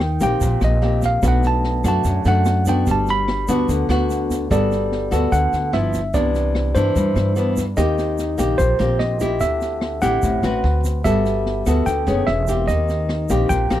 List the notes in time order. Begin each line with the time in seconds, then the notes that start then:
Already playing: D#2 D#3 G5
0.00 cross-stick, snare
0.20 A#1 A#3 C4 G4 G5, kick, snare, shaker
0.41 A#1 A#2, kick, snare, shaker
0.61 A#1 D#5, cross-stick, snare, shaker
0.82 A#3 C4 G4, snare
1.02 F5, kick, snare, shaker
1.22 B1 B2 A3 D4 F#4, kick, cross-stick, snare, shaker
1.28 F#5
1.43 A5, snare, shaker
1.64 snare
1.84 F#2 A3 D4 F#4, kick, cross-stick, snare, shaker
1.88 A5
2.04 F#2, kick, snare, shaker
2.25 F#2 A3 D4 F#4 F#5, snare, shaker
2.45 cross-stick, snare, shaker
2.66 B3 D4 F#4 G5, kick, snare, shaker
2.86 G1 G3, kick, snare, shaker
2.91 A5
3.07 B5, snare, shaker
3.28 cross-stick, snare
3.48 D2 B3 D4 F#4, kick, snare, shaker
3.69 D2 D3, kick, snare, shaker
3.89 D2 B3 D4 F#4, cross-stick, snare, shaker
4.10 snare, shaker
4.30 kick, snare, shaker
4.50 G1 G3 B3 F#4 A4 D5, kick, cross-stick, snare, shaker
4.71 snare, shaker
4.92 snare
5.11 D2 B3 F#4 A4, kick, cross-stick, snare, shaker
5.32 D2 D3 F#5, kick, snare, shaker
5.53 D2, snare, shaker
5.73 G1 F3 B3 E4 E5, cross-stick, snare
5.93 kick, snare, shaker
6.14 C2 C3 E3 B3 D4 D5, kick, snare, shaker
6.35 snare, shaker
6.55 cross-stick, snare
6.75 G2 E3 D4 C5, kick, snare, shaker
6.96 G2, kick, snare, shaker
7.16 G2, cross-stick, snare, shaker
7.36 E3 B3 D4, snare, shaker
7.57 kick, snare, shaker
7.77 D#2 D#3 A#3 C4 G4 D#5, kick, cross-stick, snare, shaker
7.98 snare, shaker
8.18 snare, shaker
8.38 A#1 A#3 C4 G4, kick, cross-stick, snare, shaker
8.58 A#1 A#2 C5, kick, snare, shaker
8.79 A#1 A#3 C4 G4, snare, shaker
8.99 D#5, cross-stick, snare
9.20 C4 E4 G4, kick, snare, shaker
9.40 D2 D3 E5, kick, snare, shaker
9.61 snare, shaker
9.81 cross-stick, snare
10.02 A1 C4 E4 G4 F#5, kick, snare, shaker
10.22 A1 A2, kick, snare, shaker
10.43 A1 C4 F#4 B4, cross-stick, snare, shaker
10.64 D2, snare
10.84 kick, snare, shaker
11.04 G1 G3 B3 F#4 A4 E5, kick, cross-stick, snare, shaker
11.26 snare, shaker
11.46 snare
11.66 D2 B3 F#4 A4, kick, cross-stick, snare, shaker
11.86 D2 D3 G5, kick, snare, shaker
12.07 F#1 B3 C#4 G#4, snare, shaker
12.27 E1 E5, cross-stick, snare
12.47 A#3 C4 G4, kick, snare, shaker
12.68 D#2 D#3 D#5, kick, snare, shaker
12.89 snare, shaker
13.09 cross-stick, snare
13.29 A#1 A#3 C4 G4, kick, snare, shaker
13.49 A#1 A#2 G5, kick, snare, shaker
13.70 A#1 A#3 C4 G4, cross-stick, snare, shaker